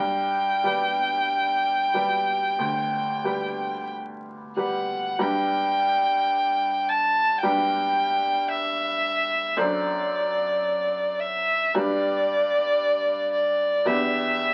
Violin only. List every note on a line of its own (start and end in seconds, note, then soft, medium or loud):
0.00 3.89 G5 soft
4.58 5.23 F#5 soft
5.21 6.90 G5 medium
6.89 7.41 A5 medium
7.42 8.49 G5 medium
8.52 9.59 E5 medium
9.57 11.22 D5 soft
11.20 11.75 E5 medium
11.74 13.32 D5 medium
13.33 13.87 D5 medium
13.86 14.54 E5 medium